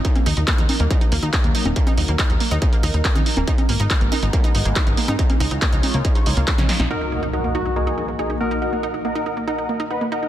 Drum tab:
HH |xxoxxxoxxxoxxxox|xxoxxxoxxxoxxxox|xxoxxxoxxxoxxxox|xxoxxxoxxxoxxxox|
CP |----x-------x---|----x-------x---|----x-------x---|----x-------x---|
SD |----------------|----------------|----------------|-------------ooo|
CG |-o----o--------o|-o-----------o-o|-o----o--------o|-o----o------o-o|
BD |o---o---o---o---|o---o---o---o---|o---o---o---o---|o---o---o---o---|

HH |----------------|----------------|
CP |----------------|----------------|
SD |----------------|----------------|
CG |----------------|----------------|
BD |----------------|----------------|